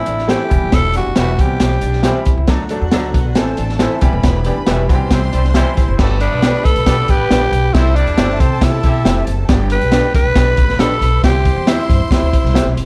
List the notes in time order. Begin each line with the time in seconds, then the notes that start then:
Already playing: E4
0.06 A1 D4, closed hi-hat
0.19 snare
0.27 E3 A3 C4 E4 G4 A4 C5 E5, snare, closed hi-hat
0.49 E1 E3 G3 B3 G4, kick, closed hi-hat
0.63 D#1
0.72 E1 E4 A4, kick, snare, closed hi-hat
0.93 E3 G3 B3 D4 F#4 G4, closed hi-hat
1.06 F#1
1.16 E1 E3 G3 A3 B3 F#4 G4 B4 E5, snare, closed hi-hat
1.37 C2 E3 G3 B3 C4 F#4 G4, kick, closed hi-hat
1.45 G4
1.60 B1 C4, snare, closed hi-hat
1.81 B1 D4, closed hi-hat
1.93 snare
2.03 E3 G3 C4 E4 G4 C5 E5, snare, closed hi-hat
2.25 F#1, kick, closed hi-hat
2.37 C#2
2.47 D2 F#3 A3 D4 F#4 A4 F#5, kick, snare, closed hi-hat
2.69 F#3 A3 D4 A4, closed hi-hat
2.81 E2
2.91 D2 F#3 A3 D4 A4 D5 F#5, snare, closed hi-hat
3.14 B1 B3, kick, closed hi-hat
3.35 A1 E3 A3 C4 A4 A5, snare, closed hi-hat
3.57 A1 D4, closed hi-hat
3.69 snare
3.79 E3 A3 C4 E4 A4 C5 E5, snare, closed hi-hat
4.01 E1 E3 G3 B3 G4 B4 B5, kick, closed hi-hat
4.13 D#1
4.23 E1 E4, kick, snare, closed hi-hat
4.44 E3 G3 B3 D4 G4, closed hi-hat
4.57 F#1
4.66 E1 E3 G3 A3 B3 E4 G4 B4 E5, snare, closed hi-hat
4.88 C2 E3 G3 B3 C4 F#4 C5 C6, kick, closed hi-hat
4.95 G4
5.11 C2 G3 C4 E4 C5, kick, snare, closed hi-hat
5.32 C2 G3 C4 D4 E4 C5, closed hi-hat
5.44 snare
5.54 E3 G3 C4 E4 G4 C5 E5, snare, closed hi-hat
5.77 G1, kick, closed hi-hat
5.88 F#1
5.98 G1 A3 B3 D4 F#4 G4 A4 B4 B5, kick, snare, crash
6.19 G3 B3 D4 B4, closed hi-hat
6.32 B1
6.42 B3 D4 G4 B4, snare, closed hi-hat
6.65 D2 A4, kick, closed hi-hat
6.76 B1, closed hi-hat
6.86 B1 B3 D4 G4 D5, kick, snare, closed hi-hat
7.08 A1 G3 B3 D4 G4 B4, kick, closed hi-hat
7.30 A#1 B3 D4 G4 B4, snare, closed hi-hat
7.52 B1, closed hi-hat
7.74 C2 G3 C4 E4 G4 A4 C5 A5, kick, snare, closed hi-hat
7.95 G3 D4 E4 D5, closed hi-hat
8.07 closed hi-hat
8.18 G1 C4 E4 G4 C5 E5, snare, closed hi-hat
8.40 C3 C4, kick, closed hi-hat
8.61 C3 C4 E4 G4, kick, snare, closed hi-hat
8.83 B2 C4 E4 G4 E5, kick, closed hi-hat
9.04 F1 C4 E4 G4 C5 E5, snare, closed hi-hat
9.27 F#1, closed hi-hat
9.47 G1 B3 D4 G4 G5, kick, snare, closed hi-hat
9.70 B4, closed hi-hat
9.81 B1, closed hi-hat
9.91 B3 D4 G4 B4, snare, closed hi-hat
10.14 D2 B4, kick, closed hi-hat
10.25 B1
10.35 B1 B3 D4 G4 B4 B5, kick, snare, closed hi-hat
10.57 A1, kick, closed hi-hat
10.69 snare
10.79 A#1 B3 D4 G4 A4 B4, snare, closed hi-hat
11.01 B1, closed hi-hat
11.23 C2 C4 E4 G4 C5 C6, kick, snare, closed hi-hat
11.45 kick, closed hi-hat
11.56 E2
11.67 C4 E4 G4 C5 E5, snare, closed hi-hat
11.90 G2, kick, closed hi-hat
12.00 E2
12.11 E2 C4 E4 G4, kick, snare, closed hi-hat
12.22 D2
12.33 kick, closed hi-hat
12.44 C2, snare
12.54 C4 E4 G4 C5 E5, snare, closed hi-hat
12.65 B1
12.75 F#1, closed hi-hat